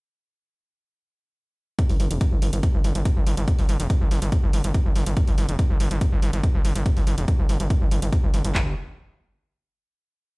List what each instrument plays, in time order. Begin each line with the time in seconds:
1.79 kick, closed hi-hat
1.89 analog synth bass G1, open hi-hat
2.00 analog synth bass G1, open hi-hat
2.11 analog synth bass F1, closed hi-hat
2.21 kick, closed hi-hat
2.32 analog synth bass G1
2.42 analog synth bass G1, open hi-hat
2.53 analog synth bass G1, closed hi-hat
2.63 kick, closed hi-hat
2.74 analog synth bass G1
2.84 analog synth bass G1, open hi-hat
2.95 analog synth bass G1, closed hi-hat
3.05 kick, closed hi-hat
3.16 analog synth bass G1
3.27 analog synth bass G1, open hi-hat
3.37 analog synth bass G1, closed hi-hat
3.48 kick, closed hi-hat
3.58 analog synth bass G1, open hi-hat
3.69 analog synth bass G1, open hi-hat
3.80 analog synth bass F1, closed hi-hat
3.90 kick, closed hi-hat
4.01 analog synth bass G1
4.11 analog synth bass G1, open hi-hat
4.22 analog synth bass G1, closed hi-hat
4.32 kick, closed hi-hat
4.43 analog synth bass G1
4.53 analog synth bass G1, open hi-hat
4.64 analog synth bass G1, closed hi-hat
4.74 kick, closed hi-hat
4.85 analog synth bass G1
4.96 analog synth bass G1, open hi-hat
5.06 analog synth bass G1, closed hi-hat
5.17 kick, closed hi-hat
5.28 analog synth bass G1, open hi-hat
5.38 analog synth bass G1, open hi-hat
5.49 analog synth bass F1, closed hi-hat
5.59 kick, closed hi-hat
5.70 analog synth bass G1
5.80 analog synth bass G1, open hi-hat
5.91 analog synth bass G1, closed hi-hat
6.01 kick, closed hi-hat
6.12 analog synth bass G1
6.22 analog synth bass G1, open hi-hat
6.33 analog synth bass G1, closed hi-hat
6.43 kick, closed hi-hat
6.54 analog synth bass G1
6.65 analog synth bass G1, open hi-hat
6.75 analog synth bass G1, closed hi-hat
6.86 kick, closed hi-hat
6.97 analog synth bass G1, open hi-hat
7.07 analog synth bass G1, open hi-hat
7.18 analog synth bass F1, closed hi-hat
7.28 kick, closed hi-hat
7.39 analog synth bass G1
7.49 analog synth bass G1, open hi-hat
7.60 analog synth bass G1, closed hi-hat
7.70 kick, closed hi-hat
7.81 analog synth bass G1
7.91 analog synth bass G1, open hi-hat
8.02 analog synth bass G1, closed hi-hat
8.13 kick, closed hi-hat
8.23 analog synth bass G1
8.34 analog synth bass G1, open hi-hat
8.45 analog synth bass G1, closed hi-hat
8.55 analog synth bass G1, kick, clap